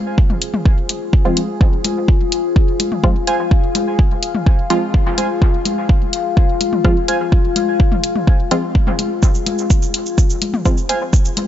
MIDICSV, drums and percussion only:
0, 0, Header, 1, 2, 480
1, 0, Start_track
1, 0, Key_signature, -4, "minor"
1, 0, Tempo, 476190
1, 1620, Time_signature, 4, 2, 24, 8
1, 11565, End_track
2, 0, Start_track
2, 0, Title_t, "Drums"
2, 180, Note_on_c, 9, 36, 117
2, 281, Note_off_c, 9, 36, 0
2, 301, Note_on_c, 9, 45, 76
2, 402, Note_off_c, 9, 45, 0
2, 420, Note_on_c, 9, 42, 85
2, 520, Note_off_c, 9, 42, 0
2, 541, Note_on_c, 9, 45, 81
2, 642, Note_off_c, 9, 45, 0
2, 660, Note_on_c, 9, 36, 116
2, 761, Note_off_c, 9, 36, 0
2, 900, Note_on_c, 9, 42, 85
2, 1000, Note_off_c, 9, 42, 0
2, 1140, Note_on_c, 9, 36, 114
2, 1241, Note_off_c, 9, 36, 0
2, 1379, Note_on_c, 9, 42, 82
2, 1380, Note_on_c, 9, 63, 54
2, 1480, Note_off_c, 9, 42, 0
2, 1481, Note_off_c, 9, 63, 0
2, 1620, Note_on_c, 9, 36, 118
2, 1721, Note_off_c, 9, 36, 0
2, 1859, Note_on_c, 9, 42, 75
2, 1861, Note_on_c, 9, 63, 74
2, 1960, Note_off_c, 9, 42, 0
2, 1961, Note_off_c, 9, 63, 0
2, 2100, Note_on_c, 9, 36, 114
2, 2201, Note_off_c, 9, 36, 0
2, 2340, Note_on_c, 9, 42, 84
2, 2440, Note_off_c, 9, 42, 0
2, 2580, Note_on_c, 9, 36, 114
2, 2681, Note_off_c, 9, 36, 0
2, 2820, Note_on_c, 9, 42, 83
2, 2820, Note_on_c, 9, 63, 53
2, 2921, Note_off_c, 9, 42, 0
2, 2921, Note_off_c, 9, 63, 0
2, 2941, Note_on_c, 9, 45, 77
2, 3042, Note_off_c, 9, 45, 0
2, 3060, Note_on_c, 9, 36, 115
2, 3161, Note_off_c, 9, 36, 0
2, 3300, Note_on_c, 9, 42, 79
2, 3401, Note_off_c, 9, 42, 0
2, 3540, Note_on_c, 9, 36, 115
2, 3641, Note_off_c, 9, 36, 0
2, 3780, Note_on_c, 9, 42, 72
2, 3780, Note_on_c, 9, 63, 70
2, 3881, Note_off_c, 9, 42, 0
2, 3881, Note_off_c, 9, 63, 0
2, 4020, Note_on_c, 9, 36, 108
2, 4121, Note_off_c, 9, 36, 0
2, 4260, Note_on_c, 9, 42, 80
2, 4361, Note_off_c, 9, 42, 0
2, 4381, Note_on_c, 9, 45, 75
2, 4482, Note_off_c, 9, 45, 0
2, 4500, Note_on_c, 9, 36, 109
2, 4601, Note_off_c, 9, 36, 0
2, 4740, Note_on_c, 9, 42, 76
2, 4841, Note_off_c, 9, 42, 0
2, 4980, Note_on_c, 9, 36, 108
2, 5081, Note_off_c, 9, 36, 0
2, 5220, Note_on_c, 9, 42, 74
2, 5220, Note_on_c, 9, 63, 53
2, 5321, Note_off_c, 9, 42, 0
2, 5321, Note_off_c, 9, 63, 0
2, 5460, Note_on_c, 9, 36, 113
2, 5561, Note_off_c, 9, 36, 0
2, 5700, Note_on_c, 9, 42, 73
2, 5700, Note_on_c, 9, 63, 71
2, 5800, Note_off_c, 9, 42, 0
2, 5801, Note_off_c, 9, 63, 0
2, 5940, Note_on_c, 9, 36, 106
2, 6041, Note_off_c, 9, 36, 0
2, 6179, Note_on_c, 9, 42, 79
2, 6280, Note_off_c, 9, 42, 0
2, 6420, Note_on_c, 9, 36, 109
2, 6521, Note_off_c, 9, 36, 0
2, 6659, Note_on_c, 9, 42, 74
2, 6660, Note_on_c, 9, 63, 51
2, 6760, Note_off_c, 9, 42, 0
2, 6761, Note_off_c, 9, 63, 0
2, 6781, Note_on_c, 9, 45, 80
2, 6882, Note_off_c, 9, 45, 0
2, 6900, Note_on_c, 9, 36, 112
2, 7001, Note_off_c, 9, 36, 0
2, 7140, Note_on_c, 9, 42, 77
2, 7241, Note_off_c, 9, 42, 0
2, 7380, Note_on_c, 9, 36, 111
2, 7481, Note_off_c, 9, 36, 0
2, 7620, Note_on_c, 9, 42, 74
2, 7620, Note_on_c, 9, 63, 74
2, 7721, Note_off_c, 9, 42, 0
2, 7721, Note_off_c, 9, 63, 0
2, 7860, Note_on_c, 9, 36, 109
2, 7961, Note_off_c, 9, 36, 0
2, 7981, Note_on_c, 9, 45, 80
2, 8082, Note_off_c, 9, 45, 0
2, 8100, Note_on_c, 9, 42, 82
2, 8201, Note_off_c, 9, 42, 0
2, 8221, Note_on_c, 9, 45, 81
2, 8322, Note_off_c, 9, 45, 0
2, 8340, Note_on_c, 9, 36, 107
2, 8441, Note_off_c, 9, 36, 0
2, 8580, Note_on_c, 9, 42, 79
2, 8681, Note_off_c, 9, 42, 0
2, 8820, Note_on_c, 9, 36, 109
2, 8921, Note_off_c, 9, 36, 0
2, 8941, Note_on_c, 9, 45, 79
2, 9042, Note_off_c, 9, 45, 0
2, 9060, Note_on_c, 9, 42, 74
2, 9060, Note_on_c, 9, 63, 49
2, 9161, Note_off_c, 9, 42, 0
2, 9161, Note_off_c, 9, 63, 0
2, 9300, Note_on_c, 9, 36, 118
2, 9300, Note_on_c, 9, 69, 62
2, 9401, Note_off_c, 9, 36, 0
2, 9401, Note_off_c, 9, 69, 0
2, 9421, Note_on_c, 9, 69, 40
2, 9522, Note_off_c, 9, 69, 0
2, 9540, Note_on_c, 9, 42, 76
2, 9540, Note_on_c, 9, 63, 79
2, 9641, Note_off_c, 9, 42, 0
2, 9641, Note_off_c, 9, 63, 0
2, 9661, Note_on_c, 9, 69, 29
2, 9762, Note_off_c, 9, 69, 0
2, 9780, Note_on_c, 9, 36, 113
2, 9780, Note_on_c, 9, 69, 62
2, 9881, Note_off_c, 9, 36, 0
2, 9881, Note_off_c, 9, 69, 0
2, 9901, Note_on_c, 9, 69, 42
2, 10002, Note_off_c, 9, 69, 0
2, 10020, Note_on_c, 9, 42, 85
2, 10121, Note_off_c, 9, 42, 0
2, 10141, Note_on_c, 9, 69, 28
2, 10242, Note_off_c, 9, 69, 0
2, 10260, Note_on_c, 9, 36, 109
2, 10260, Note_on_c, 9, 69, 60
2, 10361, Note_off_c, 9, 36, 0
2, 10361, Note_off_c, 9, 69, 0
2, 10381, Note_on_c, 9, 69, 38
2, 10482, Note_off_c, 9, 69, 0
2, 10500, Note_on_c, 9, 42, 80
2, 10500, Note_on_c, 9, 63, 54
2, 10601, Note_off_c, 9, 42, 0
2, 10601, Note_off_c, 9, 63, 0
2, 10621, Note_on_c, 9, 45, 86
2, 10722, Note_off_c, 9, 45, 0
2, 10740, Note_on_c, 9, 36, 120
2, 10740, Note_on_c, 9, 69, 60
2, 10841, Note_off_c, 9, 36, 0
2, 10841, Note_off_c, 9, 69, 0
2, 10861, Note_on_c, 9, 69, 39
2, 10962, Note_off_c, 9, 69, 0
2, 10980, Note_on_c, 9, 42, 81
2, 11081, Note_off_c, 9, 42, 0
2, 11220, Note_on_c, 9, 36, 124
2, 11220, Note_on_c, 9, 69, 60
2, 11321, Note_off_c, 9, 36, 0
2, 11321, Note_off_c, 9, 69, 0
2, 11341, Note_on_c, 9, 69, 42
2, 11442, Note_off_c, 9, 69, 0
2, 11460, Note_on_c, 9, 42, 82
2, 11460, Note_on_c, 9, 63, 80
2, 11561, Note_off_c, 9, 42, 0
2, 11561, Note_off_c, 9, 63, 0
2, 11565, End_track
0, 0, End_of_file